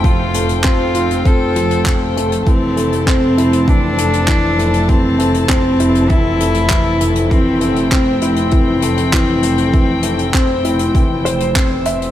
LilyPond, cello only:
\new Staff \with { instrumentName = "Cello" } { \time 4/4 \key a \phrygian \tempo 4 = 99 f'4 f'4 a'4. r8 | c'4 c'4 d'2 | c'4 c'4 e'2 | c'4 c'8 c'2~ c'8~ |
c'2. r4 | }